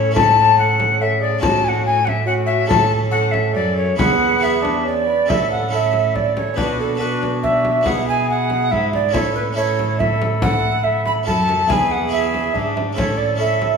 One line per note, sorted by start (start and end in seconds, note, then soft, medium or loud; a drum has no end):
0.00 1.38 A2 medium
0.00 0.14 C#4 medium
0.00 0.11 E4 medium
0.00 0.12 A4 medium
0.00 0.13 A4 medium
0.00 0.15 C#5 loud
0.11 1.36 C#4 medium
0.11 1.37 E4 medium
0.11 1.37 A4 medium
0.11 0.97 A4 medium
0.15 0.98 C#4 medium
0.15 0.56 A5 loud
0.15 frame drum medium
0.59 1.03 F#5 loud
0.80 frame drum medium
1.00 1.41 C#4 medium
1.00 1.22 A4 medium
1.00 1.21 E5 loud
1.21 1.42 G#4 medium
1.21 1.42 D5 loud
1.39 2.66 A2 medium
1.39 2.64 C#4 medium
1.39 1.98 C#4 medium
1.39 2.65 F#4 medium
1.39 2.65 A4 medium
1.39 1.66 A5 loud
1.43 2.68 A2 medium
1.43 1.99 F#4 medium
1.43 frame drum medium
1.64 1.69 G#5 loud
1.68 1.85 F#5 loud
1.85 2.07 G#5 loud
2.05 2.26 E5 loud
2.05 2.09 F#5 medium
2.05 frame drum medium
2.25 2.66 C#4 medium
2.25 2.70 F#4 medium
2.25 2.33 F#5 loud
2.46 2.68 E5 loud
2.66 3.56 A2 medium
2.66 3.52 A2 medium
2.66 3.93 C#4 medium
2.66 3.96 C#4 medium
2.66 3.94 E4 medium
2.66 3.94 A4 medium
2.66 3.98 A4 medium
2.66 2.92 A5 loud
2.71 frame drum medium
3.11 3.33 F#5 loud
3.31 3.54 E5 medium
3.31 frame drum soft
3.55 3.98 F#2 medium
3.55 3.95 F#2 medium
3.55 3.76 D5 loud
3.77 3.97 C#5 medium
3.96 5.06 E2 medium
3.96 5.05 E2 medium
3.96 4.38 B3 soft
3.96 4.41 B3 medium
3.96 4.39 E4 medium
3.96 4.40 G#4 soft
3.96 4.41 G#4 medium
3.96 4.44 F#5 loud
3.96 frame drum medium
4.39 5.24 B3 medium
4.39 4.62 B3 medium
4.39 5.25 E4 medium
4.39 5.26 G#4 medium
4.39 4.85 G#4 medium
4.43 4.86 E5 medium
4.62 4.86 D4 medium
4.62 frame drum medium
4.85 5.08 C#4 medium
4.85 5.31 D5 loud
5.07 5.27 B3 medium
5.26 6.53 A2 medium
5.26 6.54 A2 soft
5.26 5.68 C#4 soft
5.26 5.68 C#4 medium
5.26 5.69 E4 soft
5.26 5.68 A4 medium
5.26 5.70 A4 soft
5.26 5.50 E5 medium
5.30 frame drum medium
5.51 5.72 F#5 medium
5.69 6.53 C#4 soft
5.69 6.55 C#4 medium
5.69 6.54 E4 soft
5.69 6.54 A4 soft
5.73 6.59 A4 medium
5.73 6.17 E5 medium
5.93 frame drum soft
6.15 6.36 D5 medium
6.15 frame drum soft
6.36 6.58 C#5 medium
6.36 frame drum soft
6.54 7.83 B2 medium
6.54 7.82 B2 soft
6.54 6.94 B3 soft
6.54 6.96 D4 soft
6.54 6.99 D4 medium
6.54 6.97 F#4 soft
6.54 6.62 G#4 medium
6.54 6.79 B4 medium
6.54 frame drum medium
6.61 7.00 F#4 medium
6.80 7.02 A4 medium
6.95 7.80 B3 soft
6.95 7.82 D4 soft
6.95 7.82 F#4 soft
6.99 7.87 D4 medium
6.99 7.88 F#4 medium
6.99 7.24 B4 medium
7.23 frame drum soft
7.43 7.88 E5 medium
7.43 frame drum soft
7.65 frame drum soft
7.81 8.72 B2 medium
7.81 9.08 B3 soft
7.81 9.09 E4 soft
7.81 9.10 G#4 soft
7.85 8.67 B2 medium
7.85 8.70 E4 medium
7.85 8.70 G#4 medium
7.85 8.08 F#5 medium
7.85 frame drum medium
8.08 8.29 G#5 medium
8.30 8.73 F#5 medium
8.50 frame drum soft
8.70 9.10 G#2 medium
8.70 9.15 G#2 medium
8.70 9.02 E4 medium
8.70 9.13 G#4 medium
8.70 8.93 E5 loud
8.70 frame drum soft
8.93 9.14 D5 medium
8.93 frame drum soft
9.09 11.22 A2 medium
9.09 9.52 C#4 soft
9.09 9.53 E4 soft
9.09 9.54 A4 medium
9.13 11.28 A2 medium
9.13 9.56 E4 medium
9.13 9.56 A4 medium
9.13 9.34 C#5 loud
9.13 frame drum medium
9.35 9.41 B4 medium
9.53 11.21 C#4 medium
9.53 11.21 E4 medium
9.53 11.22 A4 medium
9.57 9.98 E4 medium
9.57 9.98 A4 medium
9.57 10.01 C#5 loud
9.79 frame drum soft
9.99 10.82 E4 medium
9.99 10.83 A4 medium
9.99 10.21 E5 medium
9.99 frame drum medium
10.22 frame drum medium
10.42 10.85 F#5 loud
10.42 frame drum medium
10.84 11.26 E4 medium
10.84 11.26 A4 medium
10.84 11.05 E5 medium
11.06 11.12 B5 loud
11.06 frame drum soft
11.23 11.69 F#2 medium
11.23 11.65 F#2 medium
11.23 11.66 C#4 medium
11.23 11.66 E4 medium
11.23 11.68 E4 medium
11.23 11.68 A4 medium
11.23 11.71 A5 medium
11.27 11.70 A4 medium
11.27 frame drum soft
11.49 frame drum soft
11.67 12.53 E2 medium
11.67 12.51 E2 medium
11.67 12.07 B3 medium
11.67 12.08 E4 soft
11.67 12.10 E4 medium
11.67 12.09 G#4 soft
11.67 11.74 A4 medium
11.67 11.93 G#5 loud
11.67 frame drum medium
11.73 12.12 G#4 medium
11.92 12.11 F#5 medium
12.08 12.92 B3 medium
12.08 12.93 E4 medium
12.08 12.55 E4 medium
12.08 12.94 G#4 medium
12.08 12.75 E5 medium
12.14 12.69 G#4 medium
12.34 frame drum soft
12.53 12.99 G#2 medium
12.53 12.93 G#2 medium
12.53 12.95 D4 medium
12.53 frame drum soft
12.77 frame drum medium
12.93 13.34 C#4 soft
12.93 13.38 C#4 medium
12.93 13.36 E4 soft
12.93 13.36 A4 soft
12.97 13.77 A2 soft
12.97 13.77 A2 medium
12.97 13.37 A4 medium
12.97 13.19 C#5 medium
12.97 frame drum medium
13.17 13.39 D5 medium
13.36 13.77 C#4 soft
13.36 13.77 C#4 medium
13.36 13.77 E4 soft
13.36 13.77 A4 soft
13.36 13.77 E5 medium
13.41 13.77 A4 medium
13.62 frame drum soft